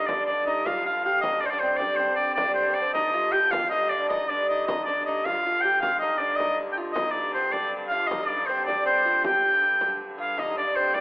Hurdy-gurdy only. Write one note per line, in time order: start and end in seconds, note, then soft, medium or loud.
0.00 1.22 G2 medium
0.00 1.23 D3 medium
1.22 5.82 G2 medium
1.22 5.82 D3 medium
5.82 10.39 G2 medium
5.82 10.39 D3 medium
10.39 11.01 G2 medium
10.39 11.01 D3 medium